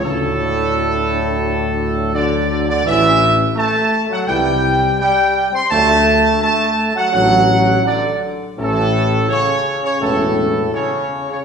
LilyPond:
<<
  \new Staff \with { instrumentName = "Trumpet section" } { \time 4/4 \key d \lydian \tempo 4 = 84 a'2. d''8. d''16 | e''4 a''8. fis''16 g''4 g''8. c'''16 | a''4 a''8. fis''16 fis''4 d''8 r8 | a'4 cis''8. cis''16 a'4 cis''8. cis''16 | }
  \new Staff \with { instrumentName = "French horn section" } { \time 4/4 \key d \lydian <fis d'>2. <fis d'>4 | <e cis'>8 r4. <e e'>8 r4. | <fis d'>8 r4. <fis d'>8 r4. | <e cis'>8 r4. <e cis'>8 r4. | }
  \new Staff \with { instrumentName = "Trombone section" } { \clef bass \time 4/4 \key d \lydian a,2. d8. d16 | e4 a8. fis16 g4 g8. c'16 | a4 a8. fis16 fis4 d8 r8 | a,4 cis8. cis16 a,4 cis8. cis16 | }
  \new Staff \with { instrumentName = "Tuba" } { \clef bass \time 4/4 \key d \lydian d,1 | a,,4 r4 c,4 r4 | d,4 r4 a,,4 r4 | a,,4 r4 e,,4 r4 | }
>>